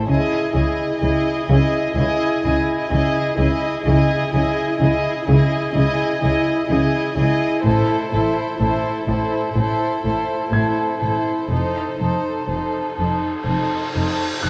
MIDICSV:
0, 0, Header, 1, 9, 480
1, 0, Start_track
1, 0, Key_signature, 4, "minor"
1, 0, Tempo, 947867
1, 44, Time_signature, 4, 2, 24, 8
1, 4844, Tempo, 977199
1, 7266, End_track
2, 0, Start_track
2, 0, Title_t, "Grand piano"
2, 0, Program_c, 0, 0
2, 0, Control_c, 0, 64, 127
2, 53, Control_c, 0, 64, 0
2, 149, Control_c, 0, 64, 127
2, 3885, Control_c, 0, 64, 0
2, 3962, Control_c, 0, 64, 127
2, 5319, Note_on_c, 0, 92, 37
2, 5807, Control_c, 0, 64, 0
2, 5904, Control_c, 0, 64, 127
2, 6742, Note_off_c, 0, 92, 0
2, 7234, Note_on_c, 0, 90, 34
2, 7266, Note_off_c, 0, 90, 0
2, 7266, End_track
3, 0, Start_track
3, 0, Title_t, "Violin section"
3, 0, Program_c, 1, 48
3, 49, Note_on_c, 1, 75, 52
3, 277, Note_off_c, 1, 75, 0
3, 283, Note_on_c, 1, 75, 46
3, 511, Note_off_c, 1, 75, 0
3, 517, Note_on_c, 1, 75, 50
3, 753, Note_off_c, 1, 75, 0
3, 758, Note_on_c, 1, 75, 50
3, 986, Note_off_c, 1, 75, 0
3, 992, Note_on_c, 1, 75, 62
3, 1228, Note_off_c, 1, 75, 0
3, 1234, Note_on_c, 1, 75, 50
3, 1471, Note_off_c, 1, 75, 0
3, 1477, Note_on_c, 1, 75, 55
3, 1708, Note_off_c, 1, 75, 0
3, 1714, Note_on_c, 1, 75, 53
3, 1944, Note_off_c, 1, 75, 0
3, 1950, Note_on_c, 1, 75, 55
3, 2189, Note_off_c, 1, 75, 0
3, 2198, Note_on_c, 1, 75, 52
3, 2430, Note_off_c, 1, 75, 0
3, 2436, Note_on_c, 1, 75, 48
3, 2672, Note_off_c, 1, 75, 0
3, 2680, Note_on_c, 1, 75, 49
3, 2905, Note_off_c, 1, 75, 0
3, 2911, Note_on_c, 1, 75, 61
3, 3147, Note_off_c, 1, 75, 0
3, 3155, Note_on_c, 1, 75, 51
3, 3383, Note_off_c, 1, 75, 0
3, 3389, Note_on_c, 1, 75, 50
3, 3622, Note_off_c, 1, 75, 0
3, 3628, Note_on_c, 1, 75, 54
3, 3867, Note_off_c, 1, 75, 0
3, 3869, Note_on_c, 1, 72, 54
3, 4108, Note_off_c, 1, 72, 0
3, 4114, Note_on_c, 1, 72, 50
3, 4349, Note_off_c, 1, 72, 0
3, 4355, Note_on_c, 1, 72, 49
3, 4593, Note_off_c, 1, 72, 0
3, 4600, Note_on_c, 1, 72, 40
3, 4833, Note_off_c, 1, 72, 0
3, 4839, Note_on_c, 1, 72, 51
3, 5072, Note_off_c, 1, 72, 0
3, 5077, Note_on_c, 1, 72, 42
3, 5305, Note_off_c, 1, 72, 0
3, 5311, Note_on_c, 1, 72, 38
3, 5545, Note_off_c, 1, 72, 0
3, 5551, Note_on_c, 1, 72, 37
3, 5790, Note_off_c, 1, 72, 0
3, 5799, Note_on_c, 1, 72, 40
3, 6030, Note_off_c, 1, 72, 0
3, 6036, Note_on_c, 1, 72, 37
3, 6273, Note_off_c, 1, 72, 0
3, 6281, Note_on_c, 1, 72, 31
3, 6516, Note_off_c, 1, 72, 0
3, 6524, Note_on_c, 1, 72, 31
3, 6758, Note_off_c, 1, 72, 0
3, 6766, Note_on_c, 1, 72, 36
3, 6999, Note_off_c, 1, 72, 0
3, 7009, Note_on_c, 1, 72, 33
3, 7240, Note_off_c, 1, 72, 0
3, 7246, Note_on_c, 1, 72, 30
3, 7266, Note_off_c, 1, 72, 0
3, 7266, End_track
4, 0, Start_track
4, 0, Title_t, "Violin section"
4, 0, Program_c, 2, 48
4, 36, Note_on_c, 2, 68, 52
4, 273, Note_off_c, 2, 68, 0
4, 281, Note_on_c, 2, 68, 48
4, 512, Note_off_c, 2, 68, 0
4, 519, Note_on_c, 2, 68, 48
4, 752, Note_off_c, 2, 68, 0
4, 758, Note_on_c, 2, 68, 45
4, 986, Note_off_c, 2, 68, 0
4, 992, Note_on_c, 2, 68, 56
4, 1230, Note_off_c, 2, 68, 0
4, 1242, Note_on_c, 2, 68, 49
4, 1468, Note_off_c, 2, 68, 0
4, 1474, Note_on_c, 2, 68, 53
4, 1708, Note_off_c, 2, 68, 0
4, 1714, Note_on_c, 2, 68, 46
4, 1950, Note_off_c, 2, 68, 0
4, 1958, Note_on_c, 2, 68, 61
4, 2190, Note_off_c, 2, 68, 0
4, 2196, Note_on_c, 2, 68, 53
4, 2429, Note_off_c, 2, 68, 0
4, 2435, Note_on_c, 2, 68, 46
4, 2666, Note_off_c, 2, 68, 0
4, 2672, Note_on_c, 2, 68, 51
4, 2908, Note_off_c, 2, 68, 0
4, 2915, Note_on_c, 2, 68, 54
4, 3145, Note_off_c, 2, 68, 0
4, 3151, Note_on_c, 2, 68, 48
4, 3383, Note_off_c, 2, 68, 0
4, 3389, Note_on_c, 2, 68, 51
4, 3624, Note_off_c, 2, 68, 0
4, 3630, Note_on_c, 2, 68, 44
4, 3868, Note_off_c, 2, 68, 0
4, 3870, Note_on_c, 2, 69, 61
4, 4107, Note_off_c, 2, 69, 0
4, 4113, Note_on_c, 2, 69, 45
4, 4351, Note_off_c, 2, 69, 0
4, 4358, Note_on_c, 2, 69, 44
4, 4592, Note_off_c, 2, 69, 0
4, 4598, Note_on_c, 2, 69, 42
4, 4834, Note_off_c, 2, 69, 0
4, 4840, Note_on_c, 2, 69, 47
4, 5067, Note_off_c, 2, 69, 0
4, 5073, Note_on_c, 2, 69, 38
4, 5302, Note_off_c, 2, 69, 0
4, 5308, Note_on_c, 2, 69, 41
4, 5543, Note_off_c, 2, 69, 0
4, 5549, Note_on_c, 2, 69, 36
4, 5785, Note_off_c, 2, 69, 0
4, 5790, Note_on_c, 2, 69, 42
4, 6030, Note_off_c, 2, 69, 0
4, 6035, Note_on_c, 2, 69, 34
4, 6271, Note_off_c, 2, 69, 0
4, 6277, Note_on_c, 2, 69, 32
4, 6511, Note_off_c, 2, 69, 0
4, 6517, Note_on_c, 2, 69, 30
4, 6753, Note_off_c, 2, 69, 0
4, 6759, Note_on_c, 2, 69, 36
4, 6991, Note_off_c, 2, 69, 0
4, 6997, Note_on_c, 2, 69, 28
4, 7231, Note_off_c, 2, 69, 0
4, 7237, Note_on_c, 2, 69, 31
4, 7266, Note_off_c, 2, 69, 0
4, 7266, End_track
5, 0, Start_track
5, 0, Title_t, "Viola section"
5, 0, Program_c, 3, 48
5, 44, Note_on_c, 3, 64, 52
5, 274, Note_off_c, 3, 64, 0
5, 280, Note_on_c, 3, 64, 46
5, 509, Note_off_c, 3, 64, 0
5, 515, Note_on_c, 3, 64, 50
5, 750, Note_off_c, 3, 64, 0
5, 756, Note_on_c, 3, 64, 48
5, 992, Note_off_c, 3, 64, 0
5, 998, Note_on_c, 3, 64, 54
5, 1233, Note_off_c, 3, 64, 0
5, 1239, Note_on_c, 3, 64, 51
5, 1468, Note_off_c, 3, 64, 0
5, 1474, Note_on_c, 3, 64, 56
5, 1707, Note_off_c, 3, 64, 0
5, 1713, Note_on_c, 3, 64, 53
5, 1946, Note_off_c, 3, 64, 0
5, 1952, Note_on_c, 3, 64, 56
5, 2190, Note_off_c, 3, 64, 0
5, 2195, Note_on_c, 3, 64, 51
5, 2429, Note_off_c, 3, 64, 0
5, 2435, Note_on_c, 3, 64, 56
5, 2668, Note_off_c, 3, 64, 0
5, 2674, Note_on_c, 3, 64, 50
5, 2906, Note_off_c, 3, 64, 0
5, 2912, Note_on_c, 3, 64, 59
5, 3145, Note_off_c, 3, 64, 0
5, 3151, Note_on_c, 3, 64, 55
5, 3384, Note_off_c, 3, 64, 0
5, 3391, Note_on_c, 3, 64, 51
5, 3626, Note_off_c, 3, 64, 0
5, 3632, Note_on_c, 3, 64, 51
5, 3869, Note_off_c, 3, 64, 0
5, 3876, Note_on_c, 3, 64, 60
5, 4112, Note_off_c, 3, 64, 0
5, 4117, Note_on_c, 3, 64, 51
5, 4351, Note_off_c, 3, 64, 0
5, 4357, Note_on_c, 3, 64, 47
5, 4594, Note_off_c, 3, 64, 0
5, 4603, Note_on_c, 3, 64, 45
5, 4838, Note_off_c, 3, 64, 0
5, 4845, Note_on_c, 3, 64, 48
5, 5075, Note_off_c, 3, 64, 0
5, 5080, Note_on_c, 3, 64, 41
5, 5313, Note_off_c, 3, 64, 0
5, 5320, Note_on_c, 3, 64, 39
5, 5552, Note_off_c, 3, 64, 0
5, 5558, Note_on_c, 3, 64, 37
5, 5794, Note_off_c, 3, 64, 0
5, 5802, Note_on_c, 3, 63, 41
5, 6036, Note_off_c, 3, 63, 0
5, 6041, Note_on_c, 3, 63, 32
5, 6275, Note_off_c, 3, 63, 0
5, 6281, Note_on_c, 3, 63, 31
5, 6514, Note_off_c, 3, 63, 0
5, 6520, Note_on_c, 3, 63, 30
5, 6756, Note_off_c, 3, 63, 0
5, 6765, Note_on_c, 3, 63, 37
5, 6998, Note_off_c, 3, 63, 0
5, 7005, Note_on_c, 3, 63, 31
5, 7238, Note_off_c, 3, 63, 0
5, 7245, Note_on_c, 3, 63, 30
5, 7266, Note_off_c, 3, 63, 0
5, 7266, End_track
6, 0, Start_track
6, 0, Title_t, "Cello section"
6, 0, Program_c, 4, 48
6, 39, Note_on_c, 4, 49, 57
6, 80, Note_off_c, 4, 49, 0
6, 277, Note_on_c, 4, 49, 52
6, 317, Note_off_c, 4, 49, 0
6, 517, Note_on_c, 4, 49, 52
6, 558, Note_off_c, 4, 49, 0
6, 752, Note_on_c, 4, 49, 55
6, 793, Note_off_c, 4, 49, 0
6, 999, Note_on_c, 4, 49, 58
6, 1039, Note_off_c, 4, 49, 0
6, 1236, Note_on_c, 4, 49, 54
6, 1277, Note_off_c, 4, 49, 0
6, 1473, Note_on_c, 4, 49, 63
6, 1514, Note_off_c, 4, 49, 0
6, 1714, Note_on_c, 4, 49, 55
6, 1754, Note_off_c, 4, 49, 0
6, 1950, Note_on_c, 4, 49, 56
6, 1991, Note_off_c, 4, 49, 0
6, 2192, Note_on_c, 4, 49, 60
6, 2232, Note_off_c, 4, 49, 0
6, 2433, Note_on_c, 4, 49, 58
6, 2473, Note_off_c, 4, 49, 0
6, 2675, Note_on_c, 4, 49, 51
6, 2715, Note_off_c, 4, 49, 0
6, 2907, Note_on_c, 4, 49, 61
6, 2948, Note_off_c, 4, 49, 0
6, 3145, Note_on_c, 4, 49, 59
6, 3186, Note_off_c, 4, 49, 0
6, 3387, Note_on_c, 4, 49, 61
6, 3428, Note_off_c, 4, 49, 0
6, 3630, Note_on_c, 4, 49, 55
6, 3670, Note_off_c, 4, 49, 0
6, 3866, Note_on_c, 4, 45, 52
6, 3907, Note_off_c, 4, 45, 0
6, 4109, Note_on_c, 4, 45, 49
6, 4150, Note_off_c, 4, 45, 0
6, 4351, Note_on_c, 4, 45, 49
6, 4391, Note_off_c, 4, 45, 0
6, 4596, Note_on_c, 4, 45, 48
6, 4636, Note_off_c, 4, 45, 0
6, 4836, Note_on_c, 4, 45, 51
6, 4876, Note_off_c, 4, 45, 0
6, 5077, Note_on_c, 4, 45, 44
6, 5116, Note_off_c, 4, 45, 0
6, 5317, Note_on_c, 4, 45, 46
6, 5356, Note_off_c, 4, 45, 0
6, 5555, Note_on_c, 4, 45, 39
6, 5594, Note_off_c, 4, 45, 0
6, 5798, Note_on_c, 4, 41, 39
6, 5838, Note_off_c, 4, 41, 0
6, 6040, Note_on_c, 4, 41, 39
6, 6079, Note_off_c, 4, 41, 0
6, 6278, Note_on_c, 4, 41, 37
6, 6317, Note_off_c, 4, 41, 0
6, 6519, Note_on_c, 4, 41, 33
6, 6558, Note_off_c, 4, 41, 0
6, 6762, Note_on_c, 4, 41, 37
6, 6801, Note_off_c, 4, 41, 0
6, 6998, Note_on_c, 4, 41, 33
6, 7038, Note_off_c, 4, 41, 0
6, 7235, Note_on_c, 4, 41, 36
6, 7266, Note_off_c, 4, 41, 0
6, 7266, End_track
7, 0, Start_track
7, 0, Title_t, "Cello section"
7, 0, Program_c, 5, 48
7, 45, Note_on_c, 5, 49, 54
7, 187, Note_off_c, 5, 49, 0
7, 280, Note_on_c, 5, 49, 47
7, 424, Note_off_c, 5, 49, 0
7, 522, Note_on_c, 5, 49, 45
7, 665, Note_off_c, 5, 49, 0
7, 762, Note_on_c, 5, 49, 71
7, 905, Note_off_c, 5, 49, 0
7, 1002, Note_on_c, 5, 49, 46
7, 1145, Note_off_c, 5, 49, 0
7, 1241, Note_on_c, 5, 49, 47
7, 1384, Note_off_c, 5, 49, 0
7, 1482, Note_on_c, 5, 49, 62
7, 1624, Note_off_c, 5, 49, 0
7, 1719, Note_on_c, 5, 49, 47
7, 1862, Note_off_c, 5, 49, 0
7, 1957, Note_on_c, 5, 49, 72
7, 2102, Note_off_c, 5, 49, 0
7, 2195, Note_on_c, 5, 49, 52
7, 2340, Note_off_c, 5, 49, 0
7, 2439, Note_on_c, 5, 49, 50
7, 2582, Note_off_c, 5, 49, 0
7, 2678, Note_on_c, 5, 49, 76
7, 2821, Note_off_c, 5, 49, 0
7, 2917, Note_on_c, 5, 49, 48
7, 3059, Note_off_c, 5, 49, 0
7, 3153, Note_on_c, 5, 49, 46
7, 3297, Note_off_c, 5, 49, 0
7, 3394, Note_on_c, 5, 49, 63
7, 3538, Note_off_c, 5, 49, 0
7, 3634, Note_on_c, 5, 49, 49
7, 3779, Note_off_c, 5, 49, 0
7, 3875, Note_on_c, 5, 45, 62
7, 4020, Note_off_c, 5, 45, 0
7, 4114, Note_on_c, 5, 45, 47
7, 4260, Note_off_c, 5, 45, 0
7, 4355, Note_on_c, 5, 45, 47
7, 4500, Note_off_c, 5, 45, 0
7, 4597, Note_on_c, 5, 45, 67
7, 4743, Note_off_c, 5, 45, 0
7, 4840, Note_on_c, 5, 45, 38
7, 4982, Note_off_c, 5, 45, 0
7, 5078, Note_on_c, 5, 45, 41
7, 5221, Note_off_c, 5, 45, 0
7, 5314, Note_on_c, 5, 45, 48
7, 5459, Note_off_c, 5, 45, 0
7, 5555, Note_on_c, 5, 45, 33
7, 5700, Note_off_c, 5, 45, 0
7, 5798, Note_on_c, 5, 41, 42
7, 5943, Note_off_c, 5, 41, 0
7, 6042, Note_on_c, 5, 41, 33
7, 6186, Note_off_c, 5, 41, 0
7, 6278, Note_on_c, 5, 41, 31
7, 6423, Note_off_c, 5, 41, 0
7, 6520, Note_on_c, 5, 41, 44
7, 6665, Note_off_c, 5, 41, 0
7, 6762, Note_on_c, 5, 41, 30
7, 6905, Note_off_c, 5, 41, 0
7, 7002, Note_on_c, 5, 41, 26
7, 7146, Note_off_c, 5, 41, 0
7, 7244, Note_on_c, 5, 41, 36
7, 7266, Note_off_c, 5, 41, 0
7, 7266, End_track
8, 0, Start_track
8, 0, Title_t, "Double bass section"
8, 0, Program_c, 6, 48
8, 46, Note_on_c, 6, 37, 50
8, 86, Note_off_c, 6, 37, 0
8, 285, Note_on_c, 6, 37, 52
8, 325, Note_off_c, 6, 37, 0
8, 520, Note_on_c, 6, 37, 56
8, 560, Note_off_c, 6, 37, 0
8, 759, Note_on_c, 6, 37, 55
8, 799, Note_off_c, 6, 37, 0
8, 999, Note_on_c, 6, 37, 61
8, 1040, Note_off_c, 6, 37, 0
8, 1241, Note_on_c, 6, 37, 51
8, 1281, Note_off_c, 6, 37, 0
8, 1477, Note_on_c, 6, 37, 60
8, 1518, Note_off_c, 6, 37, 0
8, 1717, Note_on_c, 6, 37, 58
8, 1757, Note_off_c, 6, 37, 0
8, 1956, Note_on_c, 6, 37, 62
8, 1997, Note_off_c, 6, 37, 0
8, 2196, Note_on_c, 6, 37, 57
8, 2237, Note_off_c, 6, 37, 0
8, 2438, Note_on_c, 6, 37, 56
8, 2479, Note_off_c, 6, 37, 0
8, 2679, Note_on_c, 6, 37, 57
8, 2720, Note_off_c, 6, 37, 0
8, 2918, Note_on_c, 6, 37, 64
8, 2958, Note_off_c, 6, 37, 0
8, 3156, Note_on_c, 6, 37, 56
8, 3197, Note_off_c, 6, 37, 0
8, 3395, Note_on_c, 6, 37, 62
8, 3436, Note_off_c, 6, 37, 0
8, 3637, Note_on_c, 6, 37, 56
8, 3678, Note_off_c, 6, 37, 0
8, 3879, Note_on_c, 6, 33, 65
8, 3919, Note_off_c, 6, 33, 0
8, 4121, Note_on_c, 6, 33, 52
8, 4162, Note_off_c, 6, 33, 0
8, 4362, Note_on_c, 6, 33, 59
8, 4403, Note_off_c, 6, 33, 0
8, 4607, Note_on_c, 6, 33, 47
8, 4647, Note_off_c, 6, 33, 0
8, 4843, Note_on_c, 6, 33, 50
8, 4882, Note_off_c, 6, 33, 0
8, 5082, Note_on_c, 6, 33, 41
8, 5122, Note_off_c, 6, 33, 0
8, 5319, Note_on_c, 6, 33, 45
8, 5358, Note_off_c, 6, 33, 0
8, 5559, Note_on_c, 6, 33, 44
8, 5598, Note_off_c, 6, 33, 0
8, 5800, Note_on_c, 6, 29, 41
8, 5840, Note_off_c, 6, 29, 0
8, 6041, Note_on_c, 6, 29, 33
8, 6080, Note_off_c, 6, 29, 0
8, 6283, Note_on_c, 6, 29, 39
8, 6322, Note_off_c, 6, 29, 0
8, 6522, Note_on_c, 6, 29, 33
8, 6561, Note_off_c, 6, 29, 0
8, 6760, Note_on_c, 6, 29, 39
8, 6800, Note_off_c, 6, 29, 0
8, 7003, Note_on_c, 6, 29, 31
8, 7042, Note_off_c, 6, 29, 0
8, 7241, Note_on_c, 6, 29, 37
8, 7266, Note_off_c, 6, 29, 0
8, 7266, End_track
9, 0, Start_track
9, 0, Title_t, "Cymbal swell"
9, 0, Program_c, 7, 119
9, 5798, Note_on_c, 7, 60, 41
9, 7266, Note_off_c, 7, 60, 0
9, 7266, End_track
0, 0, End_of_file